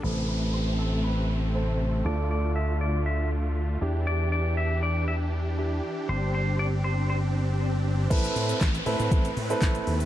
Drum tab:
CC |----------------|----------------|----------------|----------------|
HH |----------------|----------------|----------------|----------------|
SH |----------------|----------------|----------------|----------------|
CP |----------------|----------------|----------------|----------------|
SD |----------------|----------------|----------------|----------------|
BD |----------------|----------------|----------------|----------------|

CC |x---------------|
HH |xxoxxxoxxxoxxxox|
SH |xxxxxxxxxxxxxxxx|
CP |----x-------x---|
SD |----o-------o---|
BD |o---o---o---o---|